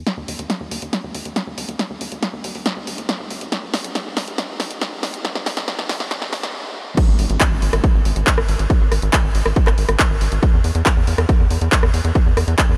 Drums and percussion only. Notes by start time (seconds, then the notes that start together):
0.07 snare, closed hi-hat
0.28 open hi-hat
0.39 closed hi-hat
0.50 snare, closed hi-hat
0.71 open hi-hat
0.82 closed hi-hat
0.93 snare, closed hi-hat
1.15 open hi-hat
1.25 closed hi-hat
1.36 snare, closed hi-hat
1.58 open hi-hat
1.69 closed hi-hat
1.79 snare, closed hi-hat
2.01 open hi-hat
2.12 closed hi-hat
2.23 snare, closed hi-hat
2.44 open hi-hat
2.55 open hi-hat
2.66 snare, closed hi-hat
2.87 open hi-hat
2.98 closed hi-hat
3.09 snare, closed hi-hat
3.30 open hi-hat
3.41 closed hi-hat
3.52 snare, closed hi-hat
3.74 snare, open hi-hat
3.84 closed hi-hat
3.95 snare, closed hi-hat
4.17 snare, open hi-hat
4.28 closed hi-hat
4.38 snare, closed hi-hat
4.60 snare, open hi-hat
4.71 closed hi-hat
4.81 snare, closed hi-hat
5.03 snare, open hi-hat
5.14 closed hi-hat
5.25 snare, closed hi-hat
5.35 snare
5.46 snare, open hi-hat
5.57 snare, closed hi-hat
5.68 snare, closed hi-hat
5.79 snare
5.89 snare, open hi-hat
6.00 snare, open hi-hat
6.11 snare, closed hi-hat
6.22 snare
6.33 snare, open hi-hat
6.43 snare, closed hi-hat
6.97 kick, closed hi-hat, crash
7.19 open hi-hat
7.30 closed hi-hat
7.41 kick, clap, closed hi-hat
7.62 open hi-hat
7.73 cross-stick, closed hi-hat
7.84 kick, closed hi-hat
8.05 open hi-hat
8.16 closed hi-hat
8.27 kick, clap, closed hi-hat
8.38 cross-stick
8.49 open hi-hat
8.59 closed hi-hat
8.70 kick, closed hi-hat
8.92 cross-stick, open hi-hat
9.02 closed hi-hat
9.13 kick, clap, closed hi-hat
9.35 open hi-hat
9.46 cross-stick, open hi-hat
9.56 kick, closed hi-hat
9.67 cross-stick, clap
9.78 open hi-hat
9.89 cross-stick, closed hi-hat
9.99 kick, clap, closed hi-hat
10.21 open hi-hat
10.32 closed hi-hat
10.43 kick, closed hi-hat
10.64 open hi-hat
10.75 closed hi-hat
10.86 kick, clap, closed hi-hat
11.07 open hi-hat
11.18 cross-stick, closed hi-hat
11.29 kick, closed hi-hat
11.51 open hi-hat
11.61 closed hi-hat
11.72 kick, clap, closed hi-hat
11.83 cross-stick
11.94 open hi-hat
12.05 closed hi-hat
12.15 kick, closed hi-hat
12.37 cross-stick, open hi-hat
12.48 closed hi-hat
12.58 kick, clap, closed hi-hat